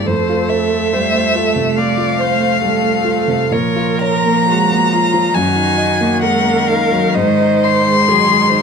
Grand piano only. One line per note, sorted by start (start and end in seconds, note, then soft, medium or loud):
0.06 1.72 F2 soft
0.29 0.63 F4 soft
0.50 0.84 C5 soft
0.72 1.06 A3 soft
0.93 1.14 G3 soft
1.15 1.48 A3 soft
1.35 1.68 F4 soft
1.56 1.89 C3 soft
1.78 2.10 A3 soft
1.97 2.31 F4 soft
2.19 2.53 C5 soft
2.40 2.74 A3 soft
2.62 2.83 G3 soft
2.83 3.18 A3 soft
3.04 3.42 F4 soft
3.27 3.52 C3 soft
3.51 5.29 A#2 soft
3.76 4.15 F4 soft
4.01 4.39 C#5 soft
4.25 4.61 A#3 soft
4.48 4.70 G#3 soft
4.71 5.05 A#3 soft
4.93 5.26 F4 soft
5.14 5.34 F3 soft
5.35 7.12 F#2 soft
5.56 5.91 D#4 soft
5.78 6.13 D#5 soft
6.01 6.36 A#3 soft
6.22 6.44 G#3 soft
6.45 6.81 A#3 soft
6.69 7.06 D#4 soft
6.92 7.16 F#3 soft
7.16 8.62 G#2 soft
7.41 7.77 D#4 soft
7.64 7.99 D#5 soft
7.87 8.21 G#3 soft
8.08 8.29 F#3 soft
8.30 8.62 G#3 soft
8.51 8.62 D#4 soft